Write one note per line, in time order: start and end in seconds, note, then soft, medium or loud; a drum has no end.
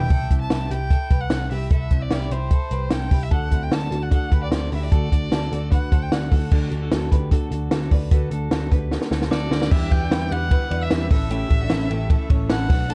0.00 0.11 D4 soft
0.00 0.10 E4 medium
0.00 0.11 E4 medium
0.00 0.10 B4 medium
0.00 0.37 G5 loud
0.00 floor tom medium
0.10 0.27 C2 loud
0.10 0.30 E4 medium
0.10 0.30 A4 loud
0.10 kick loud
0.10 closed hi-hat medium
0.31 0.47 C2 medium
0.31 0.51 C4 soft
0.31 0.51 E4 medium
0.31 kick medium
0.31 closed hi-hat medium
0.41 0.73 A5 medium
0.50 0.67 C2 medium
0.50 0.70 E4 medium
0.50 0.70 G4 medium
0.50 snare loud
0.50 closed hi-hat medium
0.71 0.95 C2 medium
0.71 0.91 E4 medium
0.71 0.91 G4 medium
0.71 1.23 G5 loud
0.71 closed hi-hat medium
0.90 1.11 E4 medium
0.90 1.11 A4 medium
0.90 kick medium
0.90 closed hi-hat medium
1.10 1.27 C2 medium
1.10 1.31 G4 soft
1.10 1.31 B4 medium
1.10 kick medium
1.10 closed hi-hat medium
1.21 1.51 F#5 loud
1.30 1.47 C2 loud
1.30 1.51 A4 medium
1.30 1.51 C5 medium
1.30 snare loud
1.30 closed hi-hat medium
1.50 1.67 C2 medium
1.50 1.71 E4 medium
1.50 1.71 G4 medium
1.50 1.70 E5 medium
1.50 open hi-hat medium
1.71 1.87 C2 loud
1.71 1.90 E4 medium
1.71 1.91 A4 loud
1.71 2.03 E5 medium
1.71 kick loud
1.71 closed hi-hat medium
1.91 2.07 C2 medium
1.91 2.12 C4 soft
1.91 2.11 E4 medium
1.91 kick medium
1.91 closed hi-hat medium
2.02 2.33 D5 medium
2.10 2.27 C2 medium
2.10 2.31 E4 medium
2.10 2.30 G4 medium
2.10 snare loud
2.10 closed hi-hat medium
2.31 2.55 C2 medium
2.31 2.51 E4 medium
2.31 2.51 G4 medium
2.31 2.93 C5 medium
2.31 closed hi-hat medium
2.51 2.72 E4 medium
2.51 2.71 A4 medium
2.51 kick medium
2.51 closed hi-hat medium
2.71 2.88 C2 loud
2.71 2.92 G4 medium
2.71 2.91 B4 medium
2.71 closed hi-hat medium
2.90 3.08 C2 loud
2.90 3.11 A4 medium
2.90 3.12 C5 medium
2.90 3.24 G5 medium
2.90 snare loud
2.90 closed hi-hat medium
3.11 3.31 C2 loud
3.11 3.31 E4 medium
3.11 3.31 G4 medium
3.11 kick medium
3.11 open hi-hat medium
3.23 3.32 E5 medium
3.31 3.48 D2 loud
3.31 3.51 D3 medium
3.31 3.51 A3 medium
3.31 3.51 D4 medium
3.31 3.51 F#4 medium
3.31 3.51 A4 loud
3.31 3.50 A4 medium
3.31 3.64 F#5 medium
3.31 kick loud
3.31 closed hi-hat medium
3.51 3.68 D2 medium
3.51 3.72 C4 soft
3.51 3.70 D4 soft
3.51 3.71 E4 medium
3.51 3.71 F#4 medium
3.51 3.71 A4 medium
3.51 kick medium
3.51 closed hi-hat medium
3.63 3.74 G5 medium
3.70 3.88 D2 medium
3.70 3.91 A3 medium
3.70 3.91 D4 medium
3.70 3.90 F#4 medium
3.70 3.91 F#4 medium
3.70 3.89 A4 medium
3.70 4.05 A5 medium
3.70 snare loud
3.70 closed hi-hat medium
3.90 4.16 D2 medium
3.90 4.12 D4 medium
3.90 4.10 D4 soft
3.90 4.11 F#4 medium
3.90 4.10 F#4 soft
3.90 4.11 A4 medium
3.90 closed hi-hat medium
4.03 4.12 F#5 medium
4.10 4.31 D3 medium
4.10 4.31 A3 medium
4.10 4.31 D4 medium
4.10 4.31 F#4 medium
4.10 4.32 F#4 medium
4.10 4.31 A4 medium
4.10 4.29 A4 medium
4.10 4.40 F#5 medium
4.10 kick medium
4.10 closed hi-hat medium
4.30 4.48 D2 loud
4.30 4.50 D4 soft
4.30 4.51 F#4 medium
4.30 4.52 G4 medium
4.30 4.51 A4 soft
4.30 4.51 B4 medium
4.30 kick medium
4.30 closed hi-hat medium
4.43 4.52 D5 medium
4.50 4.68 D2 loud
4.50 4.71 A3 medium
4.50 4.71 D4 medium
4.50 4.70 F#4 medium
4.50 4.69 A4 medium
4.50 4.72 A4 medium
4.50 4.72 C5 medium
4.50 4.74 D5 medium
4.50 snare loud
4.50 closed hi-hat medium
4.70 4.88 D2 loud
4.70 4.90 D4 soft
4.70 4.91 E4 medium
4.70 4.91 F#4 soft
4.70 4.92 G4 medium
4.70 4.91 A4 soft
4.70 open hi-hat medium
4.75 4.84 E5 medium
4.83 5.72 D5 medium
4.90 5.08 D2 loud
4.90 5.11 D3 medium
4.90 5.11 A3 medium
4.90 5.11 D4 medium
4.90 5.10 F#4 medium
4.90 5.11 F#4 medium
4.90 5.12 A4 loud
4.90 5.09 A4 medium
4.90 kick loud
4.90 closed hi-hat medium
5.10 5.28 D2 medium
5.10 5.32 D4 soft
5.10 5.30 D4 soft
5.10 5.31 F#4 soft
5.10 5.31 F#4 medium
5.10 5.31 A4 medium
5.10 kick medium
5.10 closed hi-hat medium
5.30 5.48 D2 medium
5.30 5.51 A3 medium
5.30 5.52 D4 medium
5.30 5.50 F#4 medium
5.30 5.51 F#4 medium
5.30 5.50 A4 medium
5.30 5.49 A4 medium
5.30 snare loud
5.30 closed hi-hat medium
5.50 5.76 D2 medium
5.50 5.71 D4 medium
5.50 5.71 F#4 medium
5.50 5.71 A4 medium
5.50 closed hi-hat medium
5.71 5.91 D3 medium
5.71 5.92 A3 medium
5.71 5.92 D4 medium
5.71 5.92 F#4 medium
5.71 5.91 F#4 medium
5.71 5.90 A4 medium
5.71 5.92 B4 medium
5.71 6.04 F#5 medium
5.71 kick medium
5.71 closed hi-hat medium
5.91 6.08 D2 medium
5.91 6.11 D4 soft
5.91 6.12 F#4 medium
5.91 6.11 A4 medium
5.91 6.12 A4 medium
5.91 6.12 C5 medium
5.91 kick medium
5.91 closed hi-hat medium
6.03 6.14 G5 medium
6.11 6.28 D2 loud
6.11 6.31 A3 medium
6.11 6.32 D4 medium
6.11 6.32 F#4 medium
6.11 6.31 A4 medium
6.11 6.30 A4 medium
6.11 6.31 D5 medium
6.11 6.42 F#5 medium
6.11 snare loud
6.11 closed hi-hat medium
6.31 6.48 D2 loud
6.31 6.51 D4 soft
6.31 6.51 F#4 medium
6.31 6.52 F#4 soft
6.31 6.52 A4 medium
6.31 kick medium
6.31 open hi-hat medium
6.51 6.68 D2 loud
6.51 6.71 D3 medium
6.51 6.72 A3 medium
6.51 6.72 D4 medium
6.51 6.80 D4 medium
6.51 6.80 F#4 loud
6.51 6.71 F#4 loud
6.51 6.70 A4 medium
6.51 kick loud
6.51 crash medium
6.71 6.88 D2 medium
6.71 6.91 D4 medium
6.71 6.92 F#4 medium
6.71 6.91 A4 medium
6.71 closed hi-hat medium
6.82 6.91 F#4 medium
6.82 6.91 A4 medium
6.92 7.08 D2 medium
6.92 7.12 A3 medium
6.92 7.12 D4 medium
6.92 7.12 F#4 medium
6.92 7.11 F#4 medium
6.92 7.11 A4 medium
6.92 7.10 A4 medium
6.92 snare loud
6.92 closed hi-hat medium
7.11 7.36 D2 medium
7.11 7.31 D4 soft
7.11 7.31 F#4 medium
7.11 7.32 G4 soft
7.11 7.31 A4 medium
7.11 7.32 B4 medium
7.11 kick medium
7.11 closed hi-hat medium
7.31 7.51 D3 medium
7.31 7.52 A3 medium
7.31 7.52 D4 medium
7.31 7.51 F#4 loud
7.31 7.70 F#4 medium
7.31 7.69 A4 medium
7.31 7.50 A4 medium
7.31 kick medium
7.31 closed hi-hat medium
7.51 7.68 D2 loud
7.51 7.71 D4 medium
7.51 7.72 F#4 medium
7.51 7.71 A4 medium
7.51 closed hi-hat medium
7.71 7.88 D2 loud
7.71 7.91 A3 medium
7.71 7.92 D4 medium
7.71 7.92 F#4 medium
7.71 7.91 F#4 medium
7.71 7.92 A4 medium
7.71 7.90 A4 medium
7.71 snare loud
7.71 closed hi-hat loud
7.91 8.08 D2 loud
7.91 8.10 D4 medium
7.91 8.11 F#4 medium
7.91 8.11 A4 medium
7.91 8.10 B4 soft
7.91 8.12 D5 medium
7.91 kick medium
7.91 open hi-hat medium
8.11 8.28 D2 medium
8.11 8.31 D3 medium
8.11 8.31 A3 medium
8.11 8.32 D4 medium
8.11 8.31 F#4 medium
8.11 8.30 A4 loud
8.11 8.31 B4 loud
8.11 kick loud
8.11 closed hi-hat loud
8.31 8.48 D2 loud
8.31 8.50 D4 medium
8.31 8.51 F#4 medium
8.31 8.51 A4 medium
8.31 8.50 A4 medium
8.31 closed hi-hat medium
8.50 8.68 D2 medium
8.50 8.71 A3 medium
8.50 8.71 D4 medium
8.50 8.71 F#4 medium
8.50 8.72 F#4 medium
8.50 8.71 A4 medium
8.50 8.69 A4 medium
8.50 snare loud
8.50 closed hi-hat medium
8.70 8.96 D2 medium
8.70 8.90 D4 medium
8.70 8.90 F#4 medium
8.70 9.09 G4 medium
8.70 8.91 A4 medium
8.70 9.09 B4 medium
8.70 kick medium
8.70 closed hi-hat medium
8.90 9.11 D3 medium
8.90 9.11 A3 medium
8.90 9.11 D4 medium
8.90 9.10 F#4 medium
8.90 9.09 A4 loud
8.90 snare medium
9.01 snare medium
9.10 9.28 D2 medium
9.10 9.30 D4 medium
9.10 9.31 F#4 medium
9.10 9.31 A4 medium
9.10 9.30 A4 medium
9.10 snare medium
9.21 snare medium
9.30 9.47 D2 loud
9.30 9.51 A3 medium
9.30 9.51 D4 medium
9.30 9.50 F#4 medium
9.30 9.51 A4 medium
9.30 9.49 A4 medium
9.30 9.73 D5 medium
9.30 9.68 D6 medium
9.30 snare medium
9.50 9.67 D2 loud
9.50 9.71 D4 medium
9.50 9.71 D4 soft
9.50 9.71 F#4 medium
9.50 9.71 A4 medium
9.50 snare loud
9.61 snare medium
9.71 9.88 E2 loud
9.71 11.09 D3 medium
9.71 9.91 E3 medium
9.71 11.09 G3 medium
9.71 9.91 G3 medium
9.71 11.09 B3 medium
9.71 9.92 D4 medium
9.71 12.66 E4 medium
9.71 9.99 E4 medium
9.71 9.91 E4 medium
9.71 11.09 G4 medium
9.71 9.99 G4 loud
9.71 9.89 B4 medium
9.71 9.93 E5 medium
9.71 9.91 E6 medium
9.71 kick loud
9.71 crash loud
9.90 10.08 E2 loud
9.90 10.10 D4 soft
9.90 10.10 E4 medium
9.90 10.11 B4 medium
9.90 10.33 G5 loud
9.90 10.31 G6 medium
9.90 kick medium
9.90 ride medium
10.01 10.11 D4 medium
10.01 10.11 F#4 medium
10.10 10.27 E2 loud
10.10 10.30 E3 medium
10.10 10.31 G3 medium
10.10 10.31 B3 medium
10.10 10.31 D4 medium
10.10 10.31 E4 medium
10.10 10.30 E4 medium
10.10 10.29 B4 loud
10.10 snare loud
10.10 ride medium
10.30 10.56 E2 loud
10.30 10.49 D4 medium
10.30 10.50 E4 medium
10.30 10.51 E4 medium
10.30 10.51 G4 medium
10.30 10.50 B4 medium
10.30 10.84 F#5 loud
10.30 10.81 F#6 medium
10.30 ride medium
10.50 10.70 G3 medium
10.50 10.71 D4 medium
10.50 10.70 E4 medium
10.50 10.71 G4 medium
10.50 10.70 B4 medium
10.50 10.68 B4 medium
10.50 kick medium
10.50 ride medium
10.70 10.87 E2 loud
10.70 10.89 D4 medium
10.70 10.90 E4 medium
10.70 10.90 B4 medium
10.70 10.91 D5 medium
10.70 ride medium
10.81 11.11 E5 loud
10.81 11.10 E6 medium
10.90 11.07 E2 loud
10.90 11.10 E3 medium
10.90 11.10 G3 medium
10.90 11.11 D4 loud
10.90 11.09 E4 medium
10.90 11.11 G4 medium
10.90 11.10 B4 medium
10.90 11.09 B4 loud
10.90 snare loud
10.90 ride medium
11.09 11.43 A1 loud
11.09 12.68 C#3 medium
11.09 12.68 E3 medium
11.09 12.68 A3 medium
11.09 11.29 A3 soft
11.09 11.29 C#4 soft
11.09 11.30 E4 medium
11.09 11.31 E4 medium
11.09 11.30 A4 medium
11.09 12.68 A4 medium
11.09 11.30 A4 medium
11.09 12.27 E5 loud
11.09 12.26 E6 medium
11.09 kick loud
11.09 open hi-hat medium
11.09 ride medium
11.30 11.50 A2 medium
11.30 11.50 E3 medium
11.30 11.50 A3 medium
11.30 11.50 C#4 loud
11.30 11.49 E4 medium
11.30 11.59 E4 medium
11.30 11.59 G4 loud
11.30 11.48 A4 medium
11.30 hi-hat pedal medium
11.30 ride medium
11.49 11.67 A1 loud
11.49 11.69 A3 soft
11.49 11.69 C#4 soft
11.49 11.70 E4 medium
11.49 11.70 A4 medium
11.49 kick medium
11.49 ride medium
11.61 11.71 D4 medium
11.61 11.71 F#4 medium
11.69 11.87 A1 loud
11.69 11.90 A2 medium
11.69 11.90 E3 loud
11.69 11.90 A3 medium
11.69 11.90 C#4 loud
11.69 11.91 C#4 medium
11.69 11.89 E4 loud
11.69 11.90 E4 medium
11.69 11.88 A4 loud
11.69 snare loud
11.69 ride medium
11.89 12.15 A1 loud
11.89 12.08 A3 medium
11.89 12.09 C#4 medium
11.89 12.09 E4 medium
11.89 12.10 E4 medium
11.89 12.10 G4 medium
11.89 12.10 A4 medium
11.89 ride medium
12.09 12.29 A3 medium
12.09 12.30 C#4 medium
12.09 12.29 E4 medium
12.09 12.30 E4 medium
12.09 12.30 A4 medium
12.09 12.28 A4 medium
12.09 kick loud
12.09 ride medium
12.29 12.46 A1 loud
12.29 12.49 A3 medium
12.29 12.49 C#4 medium
12.29 12.49 E4 medium
12.29 12.49 A4 medium
12.29 12.50 C#5 medium
12.29 kick loud
12.29 ride medium
12.49 12.66 A1 loud
12.49 12.69 A2 medium
12.49 12.70 E3 medium
12.49 12.70 A3 medium
12.49 12.70 C#4 medium
12.49 12.69 E4 loud
12.49 12.70 E4 medium
12.49 12.70 A4 medium
12.49 12.69 A4 loud
12.49 12.92 F#5 loud
12.49 12.87 F#6 loud
12.49 snare loud
12.49 ride medium
12.69 12.94 B1 loud
12.69 12.94 D3 medium
12.69 12.94 F#3 medium
12.69 12.94 A3 medium
12.69 12.89 A3 soft
12.69 12.94 B3 medium
12.69 12.89 D4 medium
12.69 12.90 D4 medium
12.69 12.89 F#4 medium
12.69 12.90 F#4 medium
12.69 12.94 F#4 medium
12.69 12.89 B4 medium
12.69 kick loud
12.69 open hi-hat medium
12.69 ride medium
12.89 12.94 B2 medium
12.89 12.94 F#3 medium
12.89 12.94 A3 medium
12.89 12.94 D4 medium
12.89 12.94 F#4 medium
12.89 12.94 A4 loud
12.89 12.94 B4 medium
12.89 12.94 A5 loud
12.89 12.94 A6 medium
12.89 hi-hat pedal medium
12.89 ride medium